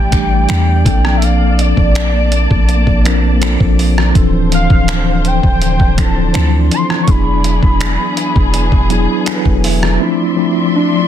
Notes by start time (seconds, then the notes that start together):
Already playing: A1 E3 G3 A3 D4 E4 G4 D5 G5
0.11 E3 G3 A3 D4 G4, finger snap, kick, closed hi-hat
0.48 E2 E3 G3 A3 D4 G4, finger snap, closed hi-hat
0.84 A#1 F3 A#3 C4 D4 A4 A5, kick, closed hi-hat
1.05 cross-stick
1.17 E5
1.22 F5, closed hi-hat
1.59 D5, closed hi-hat
1.77 A#1, kick
1.95 finger snap, closed hi-hat
2.32 closed hi-hat
2.51 A#1, kick
2.69 closed hi-hat
2.87 A#1, kick
3.04 F3 A#3 C4 D4 A#4, finger snap, closed hi-hat
3.41 F3 A#3 C4 D4 A4, finger snap, closed hi-hat
3.60 A#1, kick
3.79 open hi-hat
3.98 cross-stick
4.14 D1 D3 E3 C4 D4 A4 C5, kick, closed hi-hat
4.20 F3
4.52 F5, closed hi-hat
4.70 D1, kick
4.88 finger snap, closed hi-hat
5.25 G5, closed hi-hat
5.43 D1, kick
5.62 closed hi-hat
5.80 D1, kick
5.97 F3 C4 D4 E4 A4 A5, finger snap, kick, closed hi-hat
6.33 D2 E3 C4 D4 E4 C5 A5, finger snap, closed hi-hat
6.40 F3
6.71 C6, closed hi-hat
6.90 cross-stick
7.03 F#3 C#6
7.07 E1 E3 B3 D4 E4 G#4 B5, kick, closed hi-hat
7.44 closed hi-hat
7.63 E1, kick
7.81 finger snap, closed hi-hat
8.17 closed hi-hat
8.36 E1, kick
8.54 closed hi-hat
8.72 E1, kick
8.90 F#3 B3 D4 E4 G#4, closed hi-hat
9.26 F#3 B3 D4 E4 A4 G#5, finger snap, closed hi-hat
9.35 B4
9.45 E1, kick
9.64 E5, open hi-hat
9.83 cross-stick
9.99 F3 A3 C4 D4 E4 D5 E5 C6
10.36 F3 A3 C4 D4 E4
10.76 D4